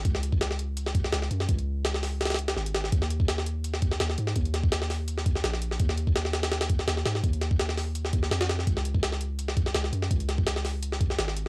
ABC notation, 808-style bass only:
X:1
M:4/4
L:1/8
Q:"Swing 16ths" 1/4=167
K:D#phr
V:1 name="808-style bass" clef=bass
C,,6 C,, F,, | C,,6 G,,,2 | D,,6 D,, G,, | D,,6 A,,,2 |
D,,6 D,, G,, | D,,4- D,, D,, ^E,,2 | C,,6 C,, F,, | C,,6 G,,,2 |]